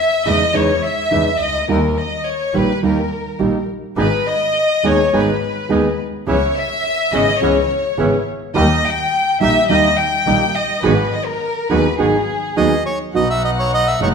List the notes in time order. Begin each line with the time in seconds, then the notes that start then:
Already playing: E5
0.26 E2 C#3 E3 G#3 D#4 E4 D#5
0.53 E2 C#3 E3 G#3 D#4 E4 C#5
0.83 E5
1.11 E2 C#3 E3 G#3 D#4 E4
1.40 C#2 D#5
1.68 D#2 D#3 G3 A#3 D#4 G4 A#4
1.97 D#5
2.26 C#5
2.54 A#1 D#3 G3 A#3 D#4 G4 B4
2.83 D#2 D#3 G3 A#3 D#4 G4 A#4
3.39 A#1 D#3 G3 A#3 D#4 G4
3.96 G#1 D#3 G#3 B3 D#4 G#4 B4
4.27 D#5
4.83 D#2 D#3 G#3 B3 D#4 G#4 C#5
5.13 G#1 D#3 G#3 B3 D#4 G#4 B4
5.69 D#2 D#3 G#3 B3 D#4 G#4
6.27 C#2 C#3 E3 B3 C#4 E4 G#4 C#5
6.57 E5
7.12 G#1 C#3 E3 B3 C#4 E4 G#4 D#5
7.41 C#2 C#3 E3 B3 C#4 E4 G#4 C#5
7.97 G#1 C#3 E3 B3 C#4 E4 G#4
8.54 D#2 D#3 G3 A#3 D#4 G4 D#5
8.85 G5
9.40 A#1 D#3 G3 A#3 D#4 G4 E5
9.69 D#2 D#3 G3 A#3 D#4 G4 D#5
9.99 G5
10.26 A#1 D#3 G3 A#3 D#4 G4
10.56 D#5
10.83 G#1 D#3 F#3 B3 D#4 F#4 G#4 B4
11.12 D#5
11.27 A#4
11.69 D#2 D#3 F#3 B3 D#4 F#4 G#4 B4
11.98 G#1 D#3 F#3 B3 D#4 F#4 G#4
12.56 D#2 D#3 F#3 B3 D#4 F#4 G#4 D#5
12.86 C#5
13.14 B1 B2 F#3 B3 D#4 F#4 D#5 F#5
13.30 E5
13.44 D#5
13.59 C#5
13.74 D#5
13.88 E5
14.00 F#1 B2 E3 G#3 B3 D#4 E4 F#4 C#5